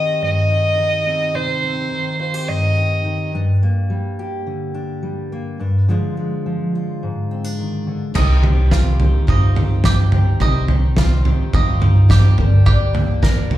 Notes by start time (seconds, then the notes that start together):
Already playing: D#3 C4 D#4 G4 D#5
0.22 G2 D#5
0.50 D#4
0.79 D#3
1.06 C4
1.34 C3 D#4 C5
1.63 C4
1.91 D#3
2.20 F4 C5
2.34 G4
2.48 G2 D#5
2.77 D#4
3.05 D#3
3.34 G2 D4
3.63 A#3
3.90 G3
4.19 G4
4.47 D3
4.74 D4
5.03 G3
5.32 A#3
5.60 G2 D4
5.88 D3 F3 G#3 D4 F4
6.17 G#3
6.46 F3
6.75 F4
7.03 G#2
7.31 C4
7.44 D4
7.59 D#3
7.87 D3
8.14 C2 C3 D#3 G3 C4 D#4 G4, kick, floor tom, crash
8.43 D#3 C4 D#4 G4, floor tom
8.71 G3 C4 D#4 F4 G4, kick, snare, floor tom
8.99 C4 D#4 G4, floor tom
9.27 G2 C3 G3 C4 D#4 F4 G4, kick, floor tom
9.55 C4 D#4 G4, floor tom
9.84 G3 C4 D#4 G4, kick, snare, floor tom
9.88 G4
10.12 C4 D#4 G4, floor tom
10.40 C2 C3 G3 C4 D#4 G4, kick, floor tom
10.68 D#3 C4 D#4 G4, floor tom
10.96 G3 C4 D#4 F4 G4, kick, snare, floor tom
11.25 C4 D#4 G4, floor tom
11.53 G2 C3 G3 C4 D#4 F4 G4, kick, floor tom
11.80 C4 D#4 G4, floor tom
12.09 G3 C4 D#4 G4, kick, snare, floor tom
12.37 G1 G2 G3 A#3 D4 G4, floor tom
12.66 G2 D3 G3 A#3 D4 G4, kick, floor tom
12.93 G3 A#3 D4 G4, floor tom
13.22 G3 A#3 D4 G4 A#4, kick, snare, floor tom
13.50 G3 A#3 D4 F4 G4, floor tom